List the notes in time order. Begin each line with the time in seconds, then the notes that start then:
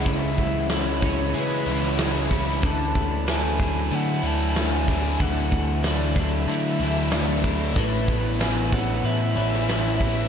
Already playing: E3 G#3 C#4 E4
0.04 C#2 C#3 E3 E5, kick, open hi-hat
0.38 G#3, kick, open hi-hat
0.69 E3 G#3 E4, snare, open hi-hat
0.74 C#5
1.01 E3 C#4, kick, open hi-hat
1.34 C#3 G#3 E4, open hi-hat
1.38 B4
1.66 C#2 E3 C#4 E4, open hi-hat
1.83 snare
1.98 E3 G#3 C#4, snare, open hi-hat
2.30 G#3 C#4 E4 B5, kick, open hi-hat
2.62 D2 D3 E3 A5, kick, open hi-hat
2.95 A3, kick, open hi-hat
3.27 E3 A3 E4 G#5, snare, open hi-hat
3.59 F#3 D4, kick, open hi-hat
3.91 D3 A3 E4, open hi-hat
3.95 F#5
4.21 D2 E3 D4 E4, open hi-hat
4.27 A5
4.54 F#3 A3 D4, snare, open hi-hat
4.59 G#5
4.87 A3 D4 E4, kick, open hi-hat
5.19 D2 D3 E3 F#5, kick, open hi-hat
5.51 A3, kick, open hi-hat
5.83 E3 A3 E4 D5, snare, open hi-hat
6.16 F#3 D4 E5, kick, open hi-hat
6.47 D3 A3 E4, open hi-hat
6.79 D2 E3 D4 E4, open hi-hat
7.11 F#3 A3 D4, snare, open hi-hat
7.44 A3 D4 E4, kick, open hi-hat
7.75 A1 A2 E3 B4, kick, open hi-hat
8.07 B3, kick, open hi-hat
8.39 E3 B3 E4 G#5, snare, open hi-hat
8.72 E3 B3 C#4 F#5, kick, open hi-hat
9.03 A2 E3 B3 E4 E5, open hi-hat
9.35 A1 E3 C#4 E4, open hi-hat
9.53 snare
9.68 E3 C#4, snare, open hi-hat
10.00 B3 E4, kick, open hi-hat